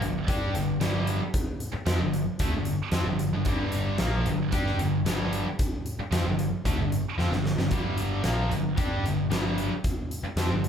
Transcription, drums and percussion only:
0.02 closed hi-hat
0.28 kick, closed hi-hat
0.55 closed hi-hat
0.81 snare, closed hi-hat
1.07 closed hi-hat
1.34 kick, closed hi-hat
1.60 closed hi-hat
1.86 snare, closed hi-hat
2.14 closed hi-hat
2.39 kick, closed hi-hat
2.65 closed hi-hat
2.92 snare, closed hi-hat
3.19 closed hi-hat
3.45 kick, closed hi-hat
3.72 closed hi-hat
3.98 snare, closed hi-hat
4.26 closed hi-hat
4.52 kick, closed hi-hat
4.67 snare
4.79 closed hi-hat
5.06 snare, closed hi-hat
5.33 closed hi-hat
5.59 kick, closed hi-hat
5.86 closed hi-hat
6.12 snare, closed hi-hat
6.39 closed hi-hat
6.65 kick, closed hi-hat
6.92 closed hi-hat
7.19 snare
7.32 snare
7.46 snare
7.59 snare
7.71 kick, closed hi-hat
7.98 closed hi-hat
8.24 snare, closed hi-hat
8.51 closed hi-hat
8.78 kick, closed hi-hat
9.06 closed hi-hat
9.32 snare, closed hi-hat
9.58 closed hi-hat
9.84 kick, closed hi-hat
10.11 closed hi-hat
10.37 snare, closed hi-hat
10.64 closed hi-hat

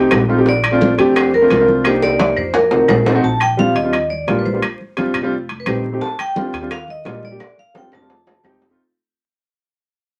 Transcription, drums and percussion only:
0.11 high bongo, low bongo, high conga, high timbale, low timbale, claves
0.29 high conga
0.46 high bongo, high conga
0.64 high conga, high timbale, claves
0.81 high bongo, high conga
0.99 high bongo, high conga, high timbale
1.16 high bongo, high conga, high timbale, claves
1.33 high bongo, high conga
1.51 high bongo, low bongo, high conga, high timbale
1.68 high bongo, high conga
1.84 high bongo, high conga, high timbale, claves
2.02 high bongo, high conga
2.20 high conga, high timbale
2.37 claves
2.54 low bongo, high conga, high timbale
2.71 high conga, low timbale
2.88 low bongo, high conga, low timbale, claves
3.06 low bongo, high conga, low timbale
3.24 high conga
3.40 high conga, high timbale, claves
3.59 high conga
3.76 high conga, high timbale
3.93 high conga, high timbale, claves
4.11 high conga
4.28 high conga, high timbale, low timbale
4.46 high conga
4.62 high conga, high timbale, claves
4.81 high conga
4.97 high conga, high timbale
5.14 high timbale, claves
5.33 high conga
5.49 high conga, high timbale
5.66 high conga, high timbale, claves
5.84 high conga
6.01 high bongo, high conga
6.19 high conga, high timbale, claves
6.36 high bongo, high conga
6.53 high bongo, high conga, high timbale
6.71 high bongo, high conga, high timbale, claves
6.88 high bongo, high conga
7.05 high bongo, low bongo, high conga, high timbale, low timbale
7.22 high bongo, high conga
7.40 high bongo, high conga, high timbale, claves
7.58 high conga
7.75 high bongo, high conga, low timbale
7.92 high bongo, low timbale, claves
8.10 high conga, low timbale
8.26 low bongo, high conga, low timbale
8.44 low bongo, high conga, low timbale, claves
8.61 low bongo, high conga, low timbale

